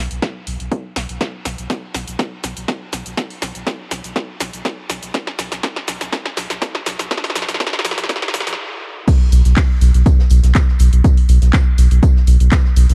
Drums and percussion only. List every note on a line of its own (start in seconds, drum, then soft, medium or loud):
0.11 closed hi-hat medium
0.22 kick loud
0.22 snare medium
0.22 closed hi-hat soft
0.47 open hi-hat loud
0.60 closed hi-hat medium
0.72 kick loud
0.72 closed hi-hat medium
0.96 snare medium
0.96 open hi-hat loud
1.09 closed hi-hat medium
1.21 kick loud
1.21 snare medium
1.21 closed hi-hat medium
1.21 shaker soft
1.45 snare medium
1.45 open hi-hat loud
1.45 shaker medium
1.58 closed hi-hat medium
1.58 shaker soft
1.70 kick loud
1.70 snare medium
1.70 closed hi-hat medium
1.70 shaker soft
1.94 snare medium
1.94 open hi-hat loud
1.94 shaker medium
2.08 closed hi-hat medium
2.08 shaker soft
2.19 kick loud
2.19 snare medium
2.19 closed hi-hat medium
2.19 shaker soft
2.44 snare medium
2.44 open hi-hat loud
2.44 shaker medium
2.57 closed hi-hat medium
2.57 shaker soft
2.68 kick loud
2.68 snare medium
2.68 closed hi-hat medium
2.68 shaker soft
2.93 snare medium
2.93 open hi-hat loud
2.93 shaker medium
3.06 closed hi-hat medium
3.06 shaker soft
3.17 kick loud
3.17 snare medium
3.17 closed hi-hat medium
3.17 shaker soft
3.30 open hi-hat medium
3.42 snare medium
3.42 open hi-hat loud
3.42 shaker medium
3.55 closed hi-hat medium
3.55 shaker soft
3.67 kick loud
3.67 snare medium
3.67 closed hi-hat medium
3.67 shaker soft
3.91 snare medium
3.91 open hi-hat loud
3.91 shaker medium
4.04 closed hi-hat medium
4.04 shaker soft
4.16 kick loud
4.16 snare medium
4.16 closed hi-hat medium
4.16 shaker soft
4.40 snare medium
4.40 open hi-hat loud
4.40 shaker medium
4.53 closed hi-hat medium
4.53 shaker soft
4.65 kick loud
4.65 snare medium
4.65 closed hi-hat medium
4.65 shaker soft
4.90 snare medium
4.90 open hi-hat loud
4.90 shaker medium
5.03 closed hi-hat medium
5.03 shaker soft
5.14 kick loud
5.14 snare medium
5.14 closed hi-hat medium
5.14 shaker soft
5.27 snare medium
5.39 snare medium
5.39 open hi-hat medium
5.39 shaker medium
5.52 snare medium
5.52 closed hi-hat medium
5.52 shaker soft
5.63 kick loud
5.63 snare loud
5.63 closed hi-hat medium
5.63 shaker soft
5.76 snare medium
5.88 snare medium
5.88 open hi-hat loud
5.88 shaker medium
6.01 snare medium
6.01 closed hi-hat medium
6.01 shaker soft
6.12 kick loud
6.12 snare loud
6.12 closed hi-hat medium
6.12 shaker soft
6.26 snare medium
6.37 snare loud
6.37 open hi-hat loud
6.37 shaker medium
6.50 snare medium
6.50 closed hi-hat medium
6.50 shaker soft
6.62 kick loud
6.62 snare loud
6.62 closed hi-hat medium
6.62 shaker soft
6.75 snare medium
6.86 snare medium
6.86 open hi-hat loud
6.86 shaker medium
6.99 snare medium
6.99 closed hi-hat medium
6.99 shaker soft
7.11 kick loud
7.11 snare loud
7.11 closed hi-hat medium
7.11 shaker soft
7.17 snare medium
7.24 snare medium
7.24 open hi-hat medium
7.30 snare medium
7.35 snare loud
7.35 open hi-hat medium
7.35 shaker medium
7.42 snare medium
7.49 snare medium
7.49 closed hi-hat medium
7.49 shaker soft
7.54 snare medium
7.60 kick loud
7.60 snare loud
7.60 closed hi-hat medium
7.60 shaker soft
7.67 snare loud
7.73 snare medium
7.79 snare medium
7.85 snare loud
7.85 open hi-hat loud
7.85 shaker medium
7.91 snare loud
7.98 snare loud
7.98 closed hi-hat medium
7.98 shaker soft
8.04 snare medium
8.09 kick loud
8.09 snare loud
8.09 closed hi-hat medium
8.09 shaker soft
8.16 snare medium
8.22 snare loud
8.28 snare medium
8.34 snare loud
8.34 open hi-hat loud
8.34 shaker medium
8.40 snare loud
8.47 snare loud
8.47 closed hi-hat medium
8.47 shaker soft
8.53 snare medium
9.08 kick loud
9.08 closed hi-hat medium
9.08 crash loud
9.08 tambourine medium
9.08 shaker soft
9.32 open hi-hat loud
9.32 tambourine medium
9.32 shaker medium
9.45 closed hi-hat soft
9.45 closed hi-hat medium
9.45 shaker soft
9.56 kick loud
9.56 snare loud
9.56 clap loud
9.56 closed hi-hat medium
9.56 open hi-hat medium
9.56 shaker soft
9.81 open hi-hat loud
9.81 tambourine medium
9.81 shaker medium
9.94 closed hi-hat medium
9.94 shaker soft
10.06 kick loud
10.06 closed hi-hat medium
10.06 tambourine medium
10.06 shaker soft
10.19 snare medium
10.30 open hi-hat loud
10.30 tambourine medium
10.30 shaker medium
10.43 snare medium
10.43 closed hi-hat medium
10.43 shaker soft
10.55 kick loud
10.55 snare loud
10.55 clap loud
10.55 closed hi-hat medium
10.55 tambourine medium
10.55 shaker soft
10.68 snare soft
10.79 open hi-hat loud
10.79 tambourine medium
10.79 shaker medium
10.93 closed hi-hat medium
10.93 shaker soft
11.04 kick loud
11.04 closed hi-hat medium
11.04 tambourine medium
11.04 shaker soft
11.17 open hi-hat medium
11.29 open hi-hat loud
11.29 tambourine medium
11.29 shaker medium
11.42 snare soft
11.42 closed hi-hat medium
11.42 shaker soft
11.53 kick loud
11.53 snare loud
11.53 clap loud
11.53 closed hi-hat medium
11.53 tambourine medium
11.53 shaker soft
11.78 open hi-hat loud
11.78 tambourine medium
11.78 shaker medium
11.91 closed hi-hat medium
11.91 shaker soft
12.03 kick loud
12.03 closed hi-hat medium
12.03 tambourine medium
12.03 shaker soft
12.16 snare medium
12.27 open hi-hat loud
12.27 tambourine medium
12.27 shaker medium
12.40 closed hi-hat medium
12.40 shaker soft
12.51 kick loud
12.51 snare loud
12.51 clap loud
12.51 closed hi-hat medium
12.51 tambourine medium
12.51 shaker soft
12.64 snare soft
12.76 open hi-hat loud
12.76 tambourine medium
12.76 shaker medium
12.90 snare medium
12.90 closed hi-hat medium
12.90 shaker soft